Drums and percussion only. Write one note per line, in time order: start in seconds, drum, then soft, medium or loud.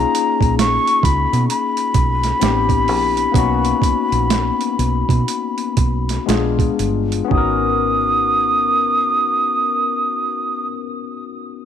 0.15 closed hi-hat medium
0.41 kick medium
0.41 closed hi-hat soft
0.59 snare medium
0.59 closed hi-hat medium
0.87 closed hi-hat soft
1.03 kick medium
1.03 closed hi-hat medium
1.33 closed hi-hat soft
1.50 closed hi-hat medium
1.77 closed hi-hat soft
1.94 kick medium
1.94 closed hi-hat medium
2.23 snare soft
2.23 closed hi-hat soft
2.41 snare medium
2.41 closed hi-hat medium
2.69 kick medium
2.69 closed hi-hat soft
2.88 open hi-hat soft
3.17 closed hi-hat soft
3.34 kick loud
3.34 closed hi-hat medium
3.65 closed hi-hat soft
3.82 kick medium
3.82 closed hi-hat medium
4.12 closed hi-hat soft
4.30 snare medium
4.30 closed hi-hat medium
4.61 closed hi-hat soft
4.79 closed hi-hat medium
5.09 kick medium
5.09 closed hi-hat soft
5.28 closed hi-hat medium
5.58 closed hi-hat soft
5.77 kick medium
5.77 closed hi-hat medium
6.09 snare soft
6.09 closed hi-hat soft
6.29 snare medium
6.29 closed hi-hat medium
6.59 kick medium
6.59 closed hi-hat soft
6.79 closed hi-hat medium
7.12 closed hi-hat soft
7.31 kick medium